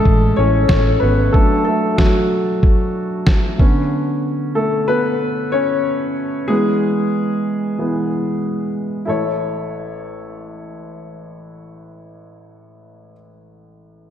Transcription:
Already playing: E3 G#3 A3 C#4 G#4 A4
0.05 A1, kick
0.36 A1 E3 A3 C#4 C#5
0.68 A1 C#4 C#5, kick, snare
1.00 G#1 B3 B4
1.32 F#3 A3 D4 A4, kick
1.65 A3 A4
1.96 F#3 F#4, kick, snare
2.63 kick
3.27 kick, snare
3.58 D3 B3 C#4, kick
4.55 A3 A4
4.88 B3 B4
5.52 C#4 C#5
6.48 E3 G#3 B3 G#4
7.79 E3 G#3 B3
9.05 A1 E4 A4 C#5

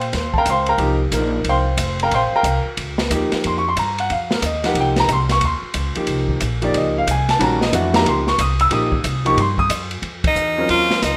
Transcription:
Already playing: A#2 C5 F5 G5 C6
0.01 ride
0.13 D#2, snare, ride
0.34 kick
0.38 A#4 F5 G5 A#5
0.46 C#2, hi-hat pedal, ride
0.50 C5 F5 G5 C6
0.66 A#4 F5 G5 A#5, ride
0.78 C2 F3 A#3 D#4 G4, ride
1.11 A#1 F3 A#3 D#4 A#4, hi-hat pedal, ride
1.44 C2, ride
1.49 C5 F5 G5 C6
1.77 F1, hi-hat pedal, ride
1.99 A#4 G5 A#5, ride
2.04 F5
2.11 A#1 C6, ride
2.15 C5 F5 G5
2.32 A#4 F5 G5 A#5, muted upright bass stroke
2.43 C2, hi-hat pedal, ride
2.65 muted upright bass stroke
2.77 C#2, ride
2.98 snare
3.10 D#2 F3 A#3 D#4 G4, hi-hat pedal, ride
3.32 muted upright bass stroke, snare, ride
3.44 F2 C6, ride
3.58 C#6
3.69 C6
3.76 G2 A#5, hi-hat pedal, ride
3.98 F#5, ride
4.10 F2 F5, ride
4.31 A#4, snare
4.42 D#2, hi-hat pedal, ride
4.46 D#5
4.64 F3 A#3 D#4 G4 F#5, snare, ride
4.75 C2, ride
4.80 G5
4.96 A#5, snare, ride
5.08 C2, hi-hat pedal, ride
5.13 C6
5.29 C#6, snare, ride
5.41 D#2, ride
5.45 C6
5.62 muted upright bass stroke
5.74 C#2, hi-hat pedal, ride
5.95 F3 A#3 D#4 G4, muted upright bass stroke, ride
6.07 C2, ride
6.29 kick
6.40 A#1, hi-hat pedal, ride
6.62 F3 A#3 D#4 G4 D5, ride
6.74 C#2 D#5, ride
6.98 F5
7.07 C2, hi-hat pedal, ride
7.11 G#5
7.29 A5, snare, ride
7.39 A#1 D#3 G3 C#4 F#4, ride
7.44 A#5
7.61 D#5, snare
7.72 F2 E3 A3 D4 F#4 F#5, hi-hat pedal, ride
7.93 F3 A#3 D#4 G4 A#5, snare, ride
8.05 C#2 C6, ride
8.27 C#6, snare
8.38 C2 D#6, hi-hat pedal, ride
8.59 E6, ride
8.71 A#1 F3 A#3 D#4 G4 D#6, ride
8.92 kick
9.04 C2, hi-hat pedal, ride
9.25 F3 A#3 D#4 G4 C#6, ride
9.37 G2 C6, ride
9.58 D#6, kick
9.69 F#2, hi-hat pedal, ride
9.91 ride
10.02 F2, ride
10.24 D#4, kick, ride
10.35 E2, hi-hat pedal
10.57 F#3 C4 C#4 F4 A#4
10.69 D#2 F4, ride
10.90 snare
11.02 C#2 D#4, snare, hi-hat pedal, ride

